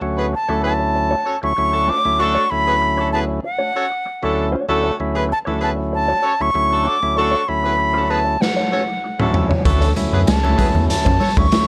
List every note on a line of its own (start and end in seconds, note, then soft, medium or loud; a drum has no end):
0.01 0.35 D2 medium
0.01 0.35 F#3 medium
0.01 0.35 A3 medium
0.01 0.35 C#4 medium
0.01 0.35 F#4 loud
0.01 muted clean electric guitar stroke soft
0.17 0.26 B3 medium
0.17 0.26 E4 medium
0.17 0.26 G#4 medium
0.17 0.26 B4 medium
0.17 muted clean electric guitar stroke medium
0.33 0.62 A5 loud
0.33 muted clean electric guitar stroke soft
0.49 1.16 D2 medium
0.49 1.16 F#3 medium
0.49 1.16 A3 medium
0.49 0.61 A3 medium
0.49 1.16 C#4 medium
0.49 0.61 D4 medium
0.49 0.62 D4 medium
0.49 1.16 E4 medium
0.49 0.63 F#4 medium
0.49 0.61 F#4 medium
0.49 0.61 A4 medium
0.49 0.63 C#5 loud
0.62 0.74 B3 medium
0.62 0.73 E4 medium
0.62 0.73 G#4 medium
0.62 0.74 B4 loud
0.62 1.39 A5 loud
0.62 muted clean electric guitar stroke soft
0.80 muted clean electric guitar stroke soft
0.95 muted clean electric guitar stroke soft
1.11 1.25 A3 medium
1.11 1.25 D4 medium
1.11 1.26 F#4 medium
1.11 1.26 C#5 medium
1.25 1.35 C#4 medium
1.25 1.36 F#4 medium
1.25 1.35 A4 medium
1.25 1.35 C#5 medium
1.25 muted clean electric guitar stroke soft
1.42 1.53 D2 medium
1.42 1.53 F#3 medium
1.42 1.53 A3 medium
1.42 1.53 C#4 medium
1.42 1.53 E4 medium
1.42 1.91 C#6 loud
1.42 muted clean electric guitar stroke medium
1.56 1.91 D2 medium
1.56 1.91 F#3 medium
1.56 1.91 A3 medium
1.56 1.91 C#4 medium
1.56 1.91 E4 medium
1.56 muted clean electric guitar stroke soft
1.72 1.98 A3 medium
1.72 1.98 D4 medium
1.72 1.98 F#4 medium
1.72 1.98 A4 loud
1.72 muted clean electric guitar stroke soft
1.88 2.08 A3 medium
1.88 2.04 D4 medium
1.88 2.04 F#4 medium
1.88 2.04 C#5 loud
1.88 2.22 D6 loud
2.05 2.38 D2 medium
2.05 2.38 F#3 medium
2.05 2.38 A3 medium
2.05 2.38 C#4 medium
2.05 2.38 E4 medium
2.05 muted clean electric guitar stroke medium
2.19 2.45 A3 loud
2.19 2.44 D4 loud
2.19 2.44 F#4 loud
2.19 2.45 A4 loud
2.19 2.52 C#6 loud
2.19 muted clean electric guitar stroke soft
2.35 2.49 A3 medium
2.35 2.50 D4 medium
2.35 2.51 F#4 medium
2.35 2.50 C#5 medium
2.50 3.40 D2 medium
2.50 3.40 F#3 medium
2.50 3.40 A3 medium
2.50 3.41 C#4 medium
2.50 3.41 E4 medium
2.50 3.12 B5 loud
2.50 muted clean electric guitar stroke medium
2.67 2.76 B3 medium
2.67 2.76 E4 medium
2.67 2.76 G#4 medium
2.67 2.76 B4 medium
2.67 muted clean electric guitar stroke medium
2.81 muted clean electric guitar stroke soft
2.98 3.10 A3 medium
2.98 3.10 D4 medium
2.98 3.11 D4 medium
2.98 3.11 F#4 medium
2.98 3.10 F#4 medium
2.98 3.10 A4 medium
2.98 3.12 C#5 medium
3.12 3.24 B3 medium
3.12 3.23 E4 medium
3.12 3.24 G#4 medium
3.12 3.24 B4 medium
3.12 3.19 A5 medium
3.12 muted clean electric guitar stroke soft
3.28 muted clean electric guitar stroke soft
3.43 4.33 F#5 loud
3.43 muted clean electric guitar stroke soft
3.58 3.73 A3 medium
3.58 3.73 D4 medium
3.58 3.74 F#4 medium
3.58 3.74 C#5 medium
3.74 3.86 C#4 medium
3.74 3.86 F#4 medium
3.74 3.85 A4 medium
3.74 3.86 C#5 medium
3.74 muted clean electric guitar stroke soft
3.90 muted clean electric guitar stroke soft
4.05 muted clean electric guitar stroke soft
4.23 4.56 D2 medium
4.23 4.56 F#3 medium
4.23 4.56 A3 medium
4.23 4.48 A3 loud
4.23 4.56 C#4 medium
4.23 4.48 D4 loud
4.23 4.56 E4 loud
4.23 4.48 F#4 medium
4.23 4.48 A4 loud
4.23 muted clean electric guitar stroke medium
4.52 4.67 A3 medium
4.52 4.67 D4 medium
4.52 4.67 F#4 medium
4.52 4.67 C#5 medium
4.68 4.91 D2 medium
4.68 4.91 F#3 medium
4.68 4.93 A3 loud
4.68 4.91 A3 medium
4.68 4.91 C#4 medium
4.68 4.93 D4 loud
4.68 4.91 E4 loud
4.68 4.93 F#4 loud
4.68 4.93 A4 loud
4.68 muted clean electric guitar stroke soft
4.83 4.96 A3 medium
4.83 4.97 D4 medium
4.83 4.98 F#4 medium
4.83 4.98 C#5 medium
4.98 5.33 D2 medium
4.98 5.33 F#3 medium
4.98 5.33 A3 medium
4.98 5.33 C#4 medium
4.98 5.33 E4 loud
4.98 muted clean electric guitar stroke soft
5.15 5.24 B3 medium
5.15 5.24 E4 medium
5.15 5.24 G#4 medium
5.15 5.24 B4 medium
5.15 muted clean electric guitar stroke soft
5.29 5.39 A5 loud
5.29 muted clean electric guitar stroke soft
5.45 6.14 D2 medium
5.45 5.53 E3 medium
5.45 5.60 A3 medium
5.45 5.59 A3 medium
5.45 6.14 A3 medium
5.45 6.14 C#4 medium
5.45 5.60 D4 medium
5.45 5.58 D4 medium
5.45 6.14 E4 loud
5.45 5.60 F#4 medium
5.45 5.59 F#4 medium
5.45 5.59 A4 medium
5.45 5.61 C#5 medium
5.54 6.17 F#3 medium
5.60 5.71 B3 medium
5.60 5.71 E4 medium
5.60 5.71 G#4 medium
5.60 5.71 B4 loud
5.60 5.70 A5 loud
5.60 muted clean electric guitar stroke soft
5.76 muted clean electric guitar stroke medium
5.92 6.43 A5 loud
5.92 muted clean electric guitar stroke medium
6.08 6.22 A3 medium
6.08 6.23 D4 medium
6.08 6.24 F#4 medium
6.08 6.23 C#5 medium
6.22 6.33 C#4 medium
6.22 6.32 F#4 medium
6.22 6.32 A4 medium
6.22 6.33 C#5 loud
6.22 muted clean electric guitar stroke soft
6.40 6.51 D2 loud
6.40 6.51 F#3 medium
6.40 6.51 A3 medium
6.40 6.51 C#4 medium
6.40 6.51 E4 medium
6.40 6.89 C#6 loud
6.40 muted clean electric guitar stroke medium
6.54 6.88 D2 medium
6.54 6.88 F#3 medium
6.54 6.88 A3 medium
6.54 6.88 C#4 medium
6.54 6.88 E4 medium
6.54 muted clean electric guitar stroke medium
6.71 6.97 A3 loud
6.71 6.97 D4 medium
6.71 6.97 F#4 medium
6.71 6.97 A4 loud
6.71 muted clean electric guitar stroke medium
6.84 7.01 A3 medium
6.84 7.01 D4 medium
6.84 7.00 F#4 medium
6.84 7.00 C#5 loud
6.84 7.18 D6 loud
7.01 7.35 D2 medium
7.01 7.36 F#3 medium
7.01 7.36 A3 medium
7.01 7.36 C#4 medium
7.01 7.36 E4 medium
7.01 muted clean electric guitar stroke medium
7.15 7.42 A3 loud
7.15 7.42 D4 loud
7.15 7.42 F#4 loud
7.15 7.42 A4 loud
7.15 7.50 C#6 loud
7.15 muted clean electric guitar stroke soft
7.31 7.46 A3 medium
7.31 7.47 D4 medium
7.31 7.47 F#4 medium
7.31 7.47 C#5 medium
7.47 8.37 D2 medium
7.47 8.38 F#3 medium
7.47 8.38 A3 medium
7.47 8.38 C#4 medium
7.47 8.38 E4 medium
7.47 8.12 B5 loud
7.47 muted clean electric guitar stroke soft
7.62 7.74 B3 medium
7.62 7.74 E4 medium
7.62 7.74 G#4 medium
7.62 7.74 B4 medium
7.62 muted clean electric guitar stroke medium
7.78 muted clean electric guitar stroke soft
7.93 8.07 A3 medium
7.93 8.07 D4 medium
7.93 8.08 F#4 medium
7.93 8.07 A4 medium
7.93 8.08 C#5 medium
8.09 8.20 B3 medium
8.09 8.20 E4 medium
8.09 8.19 G#4 medium
8.09 8.20 B4 loud
8.09 8.43 A5 loud
8.25 muted clean electric guitar stroke medium
8.40 9.34 F#5 medium
8.40 muted clean electric guitar stroke soft
8.40 snare medium
8.56 8.71 A3 medium
8.56 8.72 D4 medium
8.56 8.72 F#4 medium
8.56 8.72 C#5 medium
8.72 8.82 C#4 medium
8.72 8.82 F#4 medium
8.72 8.82 A4 medium
8.72 8.82 C#5 loud
8.72 muted clean electric guitar stroke soft
8.88 muted clean electric guitar stroke soft
9.04 muted clean electric guitar stroke soft
9.19 9.53 D2 medium
9.19 9.53 F#3 medium
9.19 9.45 A3 medium
9.19 9.53 A3 medium
9.19 9.53 C#4 medium
9.19 9.45 D4 medium
9.19 9.53 E4 medium
9.19 9.45 F#4 loud
9.19 9.45 A4 loud
9.19 muted clean electric guitar stroke soft
9.19 mid tom medium
9.34 floor tom loud
9.49 9.64 A3 medium
9.49 9.63 D4 medium
9.49 9.64 F#4 medium
9.49 9.64 C#5 medium
9.49 floor tom medium
9.65 9.88 D2 loud
9.65 9.93 D2 loud
9.65 9.88 F#3 medium
9.65 9.90 A3 loud
9.65 9.88 A3 medium
9.65 9.88 C#4 medium
9.65 9.90 D4 loud
9.65 9.88 E4 loud
9.65 9.90 F#4 loud
9.65 9.90 A4 loud
9.65 muted clean electric guitar stroke soft
9.65 kick loud
9.65 closed hi-hat loud
9.65 muted conga soft
9.65 low conga medium
9.81 9.94 A3 medium
9.81 9.94 D4 medium
9.81 9.95 F#4 medium
9.81 9.95 C#5 medium
9.81 closed hi-hat medium
9.96 10.30 D2 medium
9.96 10.30 F#3 medium
9.96 10.30 A3 medium
9.96 10.30 C#4 medium
9.96 10.30 E4 loud
9.96 muted clean electric guitar stroke soft
9.96 closed hi-hat medium
9.96 high conga medium
10.12 10.26 F#2 medium
10.12 10.22 B3 medium
10.12 10.21 E4 medium
10.12 10.22 G#4 medium
10.12 10.22 B4 medium
10.12 muted clean electric guitar stroke soft
10.26 10.55 C#2 loud
10.26 10.85 A5 loud
10.26 muted clean electric guitar stroke soft
10.26 snare loud
10.26 closed hi-hat loud
10.26 muted conga soft
10.26 high conga medium
10.43 11.11 D2 medium
10.43 11.10 F#3 medium
10.43 10.55 A3 medium
10.43 11.11 A3 medium
10.43 10.57 A3 medium
10.43 11.11 C#4 medium
10.43 10.55 D4 medium
10.43 10.57 D4 medium
10.43 11.11 E4 loud
10.43 10.55 F#4 medium
10.43 10.58 F#4 medium
10.43 10.55 A4 medium
10.43 10.58 C#5 medium
10.43 muted conga soft
10.58 10.68 B3 medium
10.58 10.68 E4 medium
10.58 10.68 G#4 medium
10.58 10.68 B4 loud
10.58 muted clean electric guitar stroke soft
10.58 kick medium
10.58 closed hi-hat medium
10.58 high conga medium
10.75 10.88 E2 medium
10.75 muted clean electric guitar stroke soft
10.75 low conga medium
10.89 10.96 F#2 soft
10.89 11.39 A5 loud
10.89 muted clean electric guitar stroke soft
10.89 snare soft
10.89 closed hi-hat loud
11.05 11.19 F#2 loud
11.05 11.19 A3 medium
11.05 11.20 D4 medium
11.05 11.20 F#4 medium
11.05 11.20 C#5 medium
11.05 kick loud
11.05 muted conga soft
11.20 11.30 C#4 medium
11.20 11.30 F#4 medium
11.20 11.30 A4 medium
11.20 11.30 C#5 loud
11.20 muted clean electric guitar stroke soft
11.20 open hi-hat medium
11.20 high conga medium
11.37 11.50 D2 loud
11.37 11.48 D2 loud
11.37 11.48 F#3 medium
11.37 11.48 A3 medium
11.37 11.48 C#4 medium
11.37 11.48 E4 loud
11.37 11.67 C#6 loud
11.37 muted clean electric guitar stroke medium
11.37 kick loud
11.37 high conga medium
11.52 11.67 D2 medium
11.52 11.67 F#3 medium
11.52 11.67 A3 medium
11.52 11.67 C#4 medium
11.52 11.67 E4 loud
11.52 muted clean electric guitar stroke soft
11.52 snare loud
11.52 closed hi-hat loud
11.52 muted conga soft